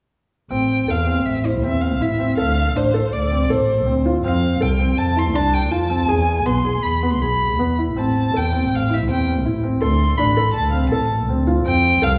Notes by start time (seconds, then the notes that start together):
0.50 A1 C4 G5
0.88 E2 A4 F5
1.07 C4
1.25 A1 E5
1.44 E4 C5
1.63 E2 C4 E5
1.81 F5
2.01 A1 E4 E5
2.19 C4
2.37 D2 A4 F5
2.76 A1 D4 C5
2.94 A4
3.13 D2 D5
3.32 C4
3.50 A1 A4 C5
3.86 D2 C4
4.06 F4
4.23 F2 C4 F5
4.61 C2 A4 G5
4.79 C4
4.98 F2 A5
5.16 E4 C6
5.34 C2 D4 A5
5.53 G5
5.71 F2 F4 A5
5.90 C4
6.08 E2 G#4 G#5
6.45 B1 B3 C6
6.65 G#4
6.82 E2 B5
7.03 B3
7.12 C6
7.21 B1 G#4 B5
7.58 E2 B3
7.78 E4
7.95 A1 C4 A5
8.34 E2 A4 G5
8.53 C4
8.71 A1
8.75 F5
8.90 E4 E5
9.07 E2 C4 G5
9.45 A1 E4
9.63 C4
9.81 D2 A4 C6
10.17 A1 D4 B5
10.37 A4
10.53 D2 A5
10.71 C4 F5
10.89 A1 A4 A5
11.29 D2 C4
11.47 F4
11.65 F2 C4 G5
12.02 C2 A4 F5